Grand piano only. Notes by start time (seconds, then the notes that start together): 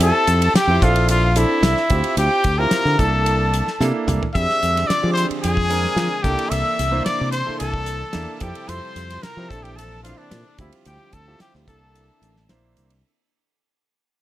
Already playing: C4 E4 G4 A4
0.69 C4 E4 G4 C5
0.83 C4 D4 E4 A4
1.36 C4 D4 E4 A4
1.90 C4 E4 F4 G4
2.59 C4 E4 F4 G4
2.98 A#3 D4 E4 A4
3.81 A#3 D4 E4 A4
4.35 C4 D4 G4 G#4
5.02 C4 D4 G4 G#4
5.70 C4 D4 G#4 A#4
6.24 A#3 D4 E4 A4
6.91 A#3 D4 E4 C5
7.46 A#3 D4 E4 A4
8.13 A#3 D4 E4 A4
8.41 C4 E4 G4 A4
9.38 C4 E4 G4 C5
9.51 C4 D4 E4 A4
10.04 C4 D4 E4 C5
10.59 C4 E4 F4 G4
11.27 C4 E4 F4 G4
11.68 A#3 D4 E4 A4
12.50 A#3 D4 E4 C5